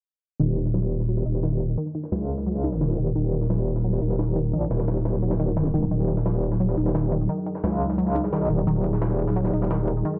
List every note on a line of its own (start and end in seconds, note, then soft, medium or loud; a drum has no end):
0.40 1.24 D#1 medium
0.40 0.46 D#3 loud
0.40 10.19 F#3 medium
0.40 10.19 D#4 medium
0.40 5.89 A#4 medium
0.40 closed hi-hat medium
0.57 0.64 D#3 medium
0.57 closed hi-hat medium
0.65 snare soft
0.74 0.81 F#3 medium
0.74 snare loud
0.74 closed hi-hat medium
0.83 snare soft
0.91 closed hi-hat medium
1.00 snare medium
1.09 1.19 F#3 medium
1.09 closed hi-hat medium
1.17 snare soft
1.26 1.76 D#1 medium
1.26 1.30 D#4 medium
1.26 closed hi-hat medium
1.34 snare soft
1.43 1.50 D#3 loud
1.43 snare loud
1.43 closed hi-hat medium
1.60 1.71 D#3 medium
1.60 closed hi-hat medium
1.77 1.84 D#3 loud
1.77 closed hi-hat medium
1.95 2.02 D#3 medium
1.95 closed hi-hat medium
2.03 snare soft
2.12 2.97 C#2 loud
2.12 2.19 F#3 medium
2.12 snare loud
2.12 closed hi-hat medium
2.21 snare soft
2.29 closed hi-hat medium
2.38 snare soft
2.46 2.57 F#3 medium
2.46 closed hi-hat medium
2.55 snare soft
2.64 2.68 D#4 medium
2.64 closed hi-hat medium
2.72 snare medium
2.81 2.88 D#3 loud
2.81 snare loud
2.81 closed hi-hat medium
2.90 snare soft
2.98 3.14 D#1 loud
2.98 3.08 D#3 medium
2.98 closed hi-hat medium
3.15 4.00 D#1 medium
3.15 3.22 D#3 loud
3.15 closed hi-hat medium
3.33 3.40 D#3 medium
3.33 closed hi-hat medium
3.41 snare soft
3.50 3.57 F#3 medium
3.50 snare loud
3.50 closed hi-hat medium
3.59 snare soft
3.67 closed hi-hat medium
3.76 snare medium
3.84 3.95 F#3 medium
3.84 closed hi-hat medium
3.93 snare soft
4.02 4.52 D#1 medium
4.02 4.06 D#4 medium
4.02 closed hi-hat medium
4.10 snare medium
4.19 4.26 D#3 loud
4.19 snare loud
4.19 closed hi-hat medium
4.36 4.46 D#3 medium
4.36 closed hi-hat medium
4.53 4.69 A#1 medium
4.53 4.60 D#3 loud
4.53 closed hi-hat medium
4.71 5.90 D#1 medium
4.71 4.77 D#3 medium
4.71 snare loud
4.71 closed hi-hat medium
4.79 snare loud
4.79 closed hi-hat medium
4.88 4.95 F#3 medium
4.88 snare loud
4.88 closed hi-hat medium
4.96 snare soft
5.05 snare loud
5.05 closed hi-hat medium
5.14 snare soft
5.22 5.33 F#3 medium
5.22 closed hi-hat medium
5.31 snare loud
5.31 closed hi-hat medium
5.40 5.46 D#3 loud
5.40 snare soft
5.40 closed hi-hat medium
5.48 closed hi-hat medium
5.57 5.67 D#3 loud
5.57 snare loud
5.57 closed hi-hat medium
5.65 snare soft
5.74 5.84 D#3 loud
5.74 closed hi-hat medium
5.91 6.76 D#1 medium
5.91 5.98 D#3 loud
5.91 10.19 G#4 medium
5.91 closed hi-hat medium
6.08 6.15 D#3 medium
6.08 closed hi-hat medium
6.17 snare soft
6.26 6.33 F#3 medium
6.26 snare loud
6.26 closed hi-hat medium
6.34 snare soft
6.43 closed hi-hat medium
6.52 snare medium
6.60 6.70 F#3 medium
6.60 closed hi-hat medium
6.69 snare soft
6.77 7.28 D#1 loud
6.77 6.82 D#4 medium
6.77 closed hi-hat medium
6.86 snare medium
6.95 7.02 D#3 loud
6.95 snare loud
6.95 closed hi-hat medium
7.12 7.22 D#3 medium
7.12 closed hi-hat medium
7.29 7.36 D#3 loud
7.29 closed hi-hat medium
7.46 7.53 D#3 medium
7.46 closed hi-hat medium
7.55 snare soft
7.64 8.24 C#2 loud
7.64 7.71 F#3 medium
7.64 snare loud
7.64 closed hi-hat medium
7.72 snare soft
7.81 closed hi-hat medium
7.90 snare medium
7.98 8.08 F#3 medium
7.98 closed hi-hat medium
8.07 snare soft
8.15 8.20 D#4 medium
8.15 closed hi-hat medium
8.24 8.49 C2 loud
8.24 snare medium
8.33 8.39 D#3 loud
8.33 snare loud
8.33 closed hi-hat medium
8.41 snare medium
8.50 8.66 D#1 medium
8.50 8.60 D#3 medium
8.50 closed hi-hat medium
8.67 9.52 D#1 medium
8.67 8.74 D#3 loud
8.67 closed hi-hat medium
8.84 8.91 D#3 medium
8.84 closed hi-hat medium
8.93 snare soft
9.02 9.08 F#3 medium
9.02 snare loud
9.02 closed hi-hat medium
9.10 snare soft
9.19 closed hi-hat medium
9.27 snare medium
9.36 9.46 F#3 medium
9.36 closed hi-hat medium
9.45 snare soft
9.53 10.04 D#1 medium
9.53 9.57 D#4 medium
9.53 closed hi-hat medium
9.62 snare medium
9.71 9.77 D#3 loud
9.71 snare loud
9.71 closed hi-hat medium
9.88 9.98 D#3 medium
9.88 closed hi-hat medium
10.05 10.12 D#3 loud
10.05 closed hi-hat medium